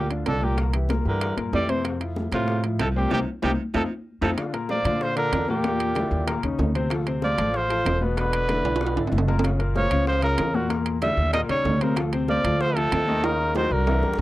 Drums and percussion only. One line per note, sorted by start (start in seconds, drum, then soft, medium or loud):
0.10 high bongo soft
0.10 high conga soft
0.10 high timbale medium
0.26 high bongo soft
0.26 low bongo medium
0.26 high conga soft
0.26 high timbale medium
0.26 low timbale medium
0.41 high conga medium
0.57 high bongo medium
0.57 high conga soft
0.57 high timbale medium
0.73 high bongo soft
0.73 high conga soft
0.73 high timbale medium
0.89 high bongo medium
0.89 high conga medium
0.89 high timbale medium
0.89 low timbale medium
1.05 high bongo soft
1.05 high conga soft
1.21 high bongo medium
1.21 high conga soft
1.21 high timbale medium
1.37 high bongo soft
1.37 high conga soft
1.37 high timbale medium
1.53 high bongo soft
1.53 low bongo medium
1.53 high conga medium
1.53 low timbale medium
1.69 high conga medium
1.69 high timbale medium
1.84 high bongo medium
1.84 high conga soft
1.84 high timbale medium
2.00 high bongo soft
2.00 high conga soft
2.00 high timbale medium
2.16 high bongo medium
2.16 high conga medium
2.16 low timbale medium
2.32 high bongo soft
2.32 high conga medium
2.32 high timbale medium
2.48 high bongo medium
2.48 high conga soft
2.63 high bongo soft
2.63 high conga soft
2.63 high timbale medium
2.79 high bongo soft
2.79 low bongo medium
2.79 high conga soft
2.79 high timbale medium
2.79 low timbale medium
2.95 high conga medium
3.11 low bongo medium
3.11 high conga medium
3.11 high timbale medium
3.42 low bongo medium
3.42 high conga medium
3.42 high timbale medium
3.74 low bongo medium
3.74 high conga medium
3.74 high timbale medium
4.22 low bongo loud
4.22 high conga medium
4.22 high timbale medium
4.37 high bongo medium
4.37 high conga soft
4.37 high timbale medium
4.53 high bongo soft
4.53 high conga soft
4.53 high timbale medium
4.69 high bongo medium
4.69 high conga medium
4.69 low timbale medium
4.85 high bongo soft
4.85 high conga loud
4.85 high timbale medium
5.01 high bongo medium
5.17 high bongo soft
5.17 high conga soft
5.17 high timbale medium
5.33 high bongo soft
5.33 low bongo medium
5.33 high conga soft
5.33 high timbale medium
5.33 low timbale medium
5.48 high conga medium
5.64 high bongo medium
5.64 high timbale medium
5.80 high bongo soft
5.80 high timbale medium
5.95 high bongo medium
5.95 high conga medium
5.95 high timbale medium
5.95 low timbale medium
6.11 high bongo soft
6.11 high conga soft
6.27 high bongo medium
6.27 high conga soft
6.27 high timbale medium
6.43 high bongo soft
6.43 high conga soft
6.43 high timbale medium
6.59 high bongo soft
6.59 low bongo medium
6.59 high conga medium
6.59 low timbale medium
6.75 high conga medium
6.75 high timbale medium
6.90 high bongo medium
6.90 high timbale medium
7.06 high bongo soft
7.06 high conga soft
7.06 high timbale medium
7.22 high bongo medium
7.22 high conga medium
7.22 low timbale medium
7.38 high bongo soft
7.38 high conga medium
7.38 high timbale medium
7.54 high bongo medium
7.54 high conga soft
7.70 high bongo soft
7.70 high conga soft
7.70 high timbale medium
7.86 high bongo soft
7.86 low bongo medium
7.86 high conga soft
7.86 high timbale medium
7.86 low timbale medium
8.01 high conga medium
8.17 high bongo medium
8.17 high conga soft
8.17 high timbale medium
8.33 high bongo soft
8.33 high timbale medium
8.49 high bongo medium
8.49 high conga medium
8.49 high timbale medium
8.49 low timbale medium
8.65 high conga soft
8.65 high timbale medium
8.76 high timbale medium
8.80 high bongo medium
8.80 high conga soft
8.87 high timbale medium
8.97 high bongo soft
8.97 high conga soft
8.97 high timbale medium
9.07 low timbale medium
9.12 high bongo soft
9.12 low bongo medium
9.12 high conga medium
9.18 low timbale loud
9.28 high conga medium
9.28 low timbale medium
9.39 low timbale medium
9.44 high bongo medium
9.44 high conga soft
9.44 high timbale medium
9.60 high bongo soft
9.60 high conga soft
9.60 high timbale medium
9.76 high bongo medium
9.76 high conga loud
9.76 low timbale medium
9.91 high bongo soft
9.91 high conga loud
9.91 high timbale medium
10.07 high bongo medium
10.07 high conga soft
10.22 high bongo soft
10.22 high conga soft
10.22 high timbale medium
10.38 high bongo soft
10.38 low bongo medium
10.38 high conga soft
10.38 high timbale loud
10.38 low timbale medium
10.54 high conga medium
10.70 high bongo medium
10.70 high conga soft
10.70 high timbale medium
10.86 high bongo soft
10.86 high conga soft
10.86 high timbale medium
11.02 high bongo medium
11.02 high conga medium
11.02 high timbale medium
11.02 low timbale medium
11.17 high bongo soft
11.17 high conga soft
11.33 high bongo medium
11.33 high conga soft
11.33 high timbale medium
11.49 high bongo soft
11.49 high conga soft
11.49 high timbale medium
11.65 high bongo soft
11.65 low bongo medium
11.65 high conga medium
11.65 low timbale medium
11.81 high conga medium
11.81 high timbale medium
11.96 high bongo medium
11.96 high conga soft
11.96 high timbale medium
12.13 high bongo soft
12.13 high conga soft
12.13 high timbale medium
12.28 high bongo medium
12.28 high conga medium
12.28 low timbale medium
12.44 high bongo soft
12.44 high conga medium
12.44 high timbale medium
12.60 high bongo medium
12.60 high conga soft
12.76 high bongo soft
12.76 high timbale medium
12.92 high bongo soft
12.92 low bongo medium
12.92 high conga soft
12.92 high timbale medium
12.92 low timbale medium
13.08 high conga medium
13.24 high bongo medium
13.24 high conga soft
13.24 high timbale medium
13.40 high bongo soft
13.40 high conga soft
13.55 high bongo medium
13.55 high conga medium
13.55 high timbale medium
13.71 high bongo soft
13.87 high bongo medium
13.87 high conga soft
13.87 low timbale medium
14.03 high bongo medium
14.03 high conga soft
14.13 high bongo medium